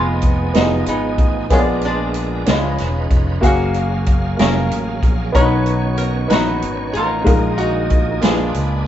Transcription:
0.00 0.51 F1 loud
0.00 1.47 F3 medium
0.00 0.84 G#3 medium
0.00 0.25 B3 medium
0.00 0.84 B3 medium
0.00 1.47 B3 medium
0.00 0.20 D#4 medium
0.00 1.46 D#4 medium
0.00 0.25 F4 medium
0.00 0.55 F4 medium
0.00 0.26 G#4 medium
0.00 1.46 G#4 medium
0.00 0.26 D#5 medium
0.22 kick medium
0.22 closed hi-hat medium
0.54 0.85 F1 medium
0.54 1.21 B3 medium
0.54 0.87 D#4 medium
0.54 1.22 F4 medium
0.54 0.62 F#4 soft
0.54 1.22 D#5 medium
0.54 snare loud
0.54 closed hi-hat medium
0.62 1.25 G#4 medium
0.86 1.16 G#1 medium
0.86 1.48 G#3 medium
0.86 1.48 B3 medium
0.86 1.52 D#4 medium
0.86 closed hi-hat medium
1.18 1.48 A1 medium
1.18 kick medium
1.18 closed hi-hat soft
1.49 2.43 A#1 loud
1.49 2.43 A#2 medium
1.49 2.46 G#3 medium
1.49 1.84 G#3 medium
1.49 2.46 B3 medium
1.49 2.17 B3 medium
1.49 2.46 D4 medium
1.49 1.61 F4 medium
1.49 2.18 G#4 medium
1.49 2.46 A#4 medium
1.49 2.18 A#4 medium
1.49 1.58 C#5 medium
1.49 kick loud
1.49 closed hi-hat medium
1.53 1.84 D4 medium
1.59 2.22 D5 medium
1.81 2.49 D4 medium
1.81 closed hi-hat soft
1.86 2.44 F3 medium
1.86 2.44 G#3 medium
2.14 closed hi-hat medium
2.46 2.76 C#2 medium
2.46 3.39 C#3 medium
2.46 3.42 F3 medium
2.46 3.40 B3 medium
2.46 3.42 C#4 medium
2.46 3.13 C#4 medium
2.46 3.42 D#4 medium
2.46 2.53 D#4 soft
2.46 3.16 F4 medium
2.46 3.42 B4 medium
2.46 3.14 B4 medium
2.46 3.15 D#5 medium
2.46 snare loud
2.46 closed hi-hat medium
2.50 3.40 G#3 medium
2.50 3.17 F4 medium
2.78 3.09 E1 medium
2.78 snare soft
2.78 closed hi-hat medium
3.11 3.40 F1 medium
3.11 kick medium
3.11 closed hi-hat soft
3.41 4.35 F#1 loud
3.41 5.31 F#3 medium
3.41 4.08 A#3 medium
3.41 5.30 A#3 medium
3.41 4.09 F#4 medium
3.41 3.49 F#4 medium
3.41 4.09 G#4 medium
3.41 5.30 F5 medium
3.41 4.10 F5 medium
3.41 kick medium
3.41 closed hi-hat medium
3.45 4.36 A#3 medium
3.45 4.36 C#4 medium
3.45 4.04 F#4 medium
3.50 5.34 G#4 medium
3.74 closed hi-hat soft
4.06 kick medium
4.06 closed hi-hat medium
4.37 4.68 F1 medium
4.37 5.05 F#3 medium
4.37 5.04 A#3 medium
4.37 5.31 C#4 medium
4.37 5.31 F4 medium
4.37 5.06 G#4 medium
4.37 5.38 A#4 medium
4.37 5.06 F5 medium
4.37 snare loud
4.37 closed hi-hat medium
4.71 5.00 A1 medium
4.71 closed hi-hat medium
5.03 5.32 A#1 medium
5.03 kick medium
5.03 closed hi-hat soft
5.32 6.27 B1 loud
5.32 6.26 B2 medium
5.32 5.42 C#3 soft
5.32 6.00 B3 medium
5.32 7.23 B3 medium
5.32 5.40 C#4 medium
5.32 7.23 C#4 medium
5.32 6.27 F#4 medium
5.32 5.95 B4 loud
5.32 6.02 C#5 medium
5.32 7.23 C#5 medium
5.32 6.01 A#5 medium
5.32 kick loud
5.32 closed hi-hat medium
5.37 6.28 D#4 medium
5.37 6.04 D#4 medium
5.43 7.26 D#3 medium
5.66 closed hi-hat soft
5.97 6.29 A#4 medium
5.97 closed hi-hat medium
6.28 6.60 A#1 medium
6.28 6.96 B3 medium
6.28 6.96 D#4 medium
6.28 6.93 B4 loud
6.28 6.97 D#5 medium
6.28 6.97 A#5 medium
6.28 snare loud
6.28 closed hi-hat medium
6.32 6.95 D#4 medium
6.32 6.96 F#4 medium
6.62 6.92 G#1 medium
6.62 closed hi-hat medium
6.93 7.24 A1 medium
6.93 7.59 D#4 medium
6.93 7.87 F4 medium
6.93 7.60 A#4 loud
6.93 closed hi-hat soft
7.25 8.18 A#1 loud
7.25 8.18 A#2 medium
7.25 8.22 D#3 medium
7.25 7.92 G#3 medium
7.25 8.22 A#3 medium
7.25 7.92 D#4 medium
7.25 8.23 D#4 medium
7.25 8.22 G#4 medium
7.25 7.93 A#4 medium
7.25 7.93 F5 medium
7.25 kick loud
7.25 closed hi-hat medium
7.58 8.19 D#4 medium
7.58 8.18 F#4 loud
7.58 closed hi-hat soft
7.90 kick medium
7.90 closed hi-hat medium
8.21 8.52 A#1 loud
8.21 8.87 A#2 medium
8.21 8.87 G#3 medium
8.21 8.87 A#3 medium
8.21 8.87 D4 medium
8.21 8.87 F4 medium
8.21 8.87 G#4 medium
8.21 8.87 B4 medium
8.21 snare loud
8.21 closed hi-hat medium
8.54 8.84 C#2 medium
8.54 closed hi-hat medium

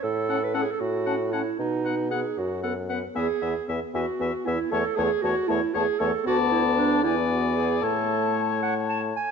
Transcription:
0.03 0.67 A2 medium
0.03 0.45 A4 medium
0.29 0.38 C#4 soft
0.29 0.38 F#5 medium
0.29 0.36 A5 soft
0.44 0.56 B4 medium
0.54 0.64 C#4 medium
0.54 0.64 A4 medium
0.54 0.64 F#5 medium
0.54 0.61 A5 medium
0.62 0.73 G#4 medium
0.71 0.82 A4 medium
0.80 1.46 A2 medium
0.80 1.33 F#4 medium
1.06 1.16 C#4 soft
1.06 1.16 F#5 soft
1.06 1.13 A5 soft
1.32 1.43 C#4 soft
1.32 1.58 E4 medium
1.32 1.42 F#5 soft
1.32 1.40 A5 soft
1.59 2.25 B2 medium
1.59 2.10 D#4 medium
1.85 1.95 B3 soft
1.85 1.91 F#5 soft
1.85 1.95 F#5 soft
2.10 2.21 B3 soft
2.10 2.40 G#4 medium
2.10 2.17 F#5 soft
2.10 2.21 F#5 soft
2.38 3.03 F#2 soft
2.38 2.62 F#4 medium
2.63 2.73 B3 soft
2.63 2.75 A4 medium
2.63 2.69 F#5 soft
2.63 2.73 F#5 soft
2.89 2.99 B3 soft
2.89 3.01 B4 medium
2.89 2.99 F#5 soft
2.89 2.96 F#5 soft
3.15 3.28 E2 medium
3.15 3.27 B3 medium
3.15 3.66 G#4 medium
3.15 3.28 E5 medium
3.15 3.21 G#5 soft
3.42 3.54 E2 soft
3.42 3.54 B3 medium
3.42 3.54 E5 soft
3.42 3.48 G#5 soft
3.68 3.80 E2 soft
3.68 3.80 B3 soft
3.68 3.80 E5 soft
3.68 3.75 G#5 soft
3.94 4.06 E2 medium
3.94 4.06 B3 medium
3.94 4.47 F#4 medium
3.94 4.07 E5 soft
3.94 4.01 G#5 soft
4.19 4.32 E2 medium
4.19 4.31 B3 soft
4.19 4.33 E5 soft
4.19 4.27 G#5 medium
4.45 4.58 E2 medium
4.45 4.57 B3 medium
4.45 4.73 E4 medium
4.45 4.59 E5 medium
4.45 4.51 G#5 soft
4.71 4.84 E2 medium
4.71 4.83 A3 medium
4.71 4.97 A4 medium
4.71 4.84 C#5 medium
4.71 4.78 A5 medium
4.96 5.09 E2 medium
4.96 5.09 A3 medium
4.96 5.23 G#4 medium
4.96 5.10 C#5 medium
4.96 5.03 A5 medium
5.22 5.35 E2 medium
5.22 5.34 A3 medium
5.22 5.49 F#4 medium
5.22 5.36 C#5 medium
5.22 5.29 A5 medium
5.48 5.61 E2 medium
5.48 5.60 A3 medium
5.48 5.75 E4 medium
5.48 5.61 C#5 medium
5.48 5.54 A5 medium
5.74 5.86 E2 medium
5.74 5.86 A3 medium
5.74 6.01 G#4 medium
5.74 5.86 C#5 medium
5.74 5.82 A5 medium
5.99 6.12 E2 medium
5.99 6.12 A3 medium
5.99 6.25 A4 medium
5.99 6.12 C#5 medium
5.99 6.06 A5 medium
6.25 7.05 D2 medium
6.25 6.99 B3 medium
6.25 6.38 F#4 medium
6.25 7.00 D5 medium
6.25 7.01 A5 medium
6.51 6.63 E4 medium
6.77 7.03 D4 medium
7.03 7.82 E2 medium
7.03 7.84 B3 medium
7.03 7.15 E4 medium
7.03 7.86 D5 medium
7.03 7.83 G#5 medium
7.30 7.57 F#4 medium
7.56 7.84 G#4 medium
7.82 9.13 A2 medium
7.82 9.16 A3 medium
7.82 8.62 A4 medium
7.82 9.17 C#5 medium
7.82 9.16 A5 medium
8.62 8.74 F#5 medium
8.89 9.01 A5 medium
9.16 9.31 G#5 medium

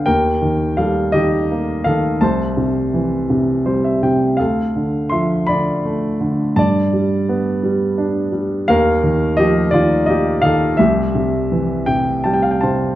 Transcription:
0.06 2.18 D#2 medium
0.06 0.73 A#4 medium
0.06 0.79 G5 medium
0.42 1.12 D#3 soft
0.77 2.18 G3 soft
0.77 1.11 A4 soft
0.77 1.14 F5 medium
1.12 1.84 D#3 soft
1.12 1.82 G4 medium
1.12 1.87 D#5 medium
1.51 2.20 A#3 soft
1.84 2.20 D#3 soft
1.84 2.19 A4 medium
1.84 2.22 F5 medium
2.21 4.36 C2 soft
2.21 3.26 C5 medium
2.21 3.25 A5 medium
2.57 3.28 C3 soft
2.94 4.36 E3 soft
3.30 4.01 C3 soft
3.66 4.37 G3 soft
3.66 3.83 C5 soft
3.84 4.01 E5 soft
4.03 4.38 C3 soft
4.03 4.37 G5 medium
4.37 6.53 D2 soft
4.37 5.08 A4 soft
4.37 5.13 F5 medium
4.76 5.47 D3 soft
5.09 6.53 F3 soft
5.09 5.46 E5 soft
5.09 5.48 C6 medium
5.47 6.19 D3 soft
5.47 6.17 D5 medium
5.47 6.16 B5 medium
5.85 6.55 A3 soft
6.21 6.56 D3 soft
6.56 8.64 G2 medium
6.56 8.30 D5 medium
6.56 8.28 A5 medium
6.93 7.62 G3 soft
7.29 8.64 B3 medium
7.63 8.31 G3 soft
7.98 8.66 D4 soft
8.32 8.67 G3 soft
8.68 10.75 D#2 medium
8.68 9.35 A#4 medium
8.68 9.40 F5 medium
9.03 9.71 D#3 soft
9.37 10.74 F3 soft
9.37 9.71 G4 medium
9.37 9.73 D#5 medium
9.71 10.42 D#3 soft
9.71 10.06 F4 medium
9.71 10.08 D5 medium
10.06 10.76 A#3 soft
10.06 10.41 G4 medium
10.06 10.43 D#5 medium
10.42 10.77 D#3 soft
10.42 10.77 A4 medium
10.42 10.79 F5 medium
10.77 12.95 C2 medium
10.77 12.60 G4 medium
10.77 12.58 E5 medium
11.15 11.86 C3 soft
11.52 12.95 E3 soft
11.86 12.62 C3 soft
11.86 12.24 G5 medium
12.24 12.95 G3 soft
12.24 12.32 G5 soft
12.24 12.34 A5 medium
12.34 12.43 G5 medium
12.43 12.52 F5 medium
12.51 12.61 G5 medium
12.61 12.95 C3 soft
12.61 12.95 C5 medium
12.61 12.95 A5 medium

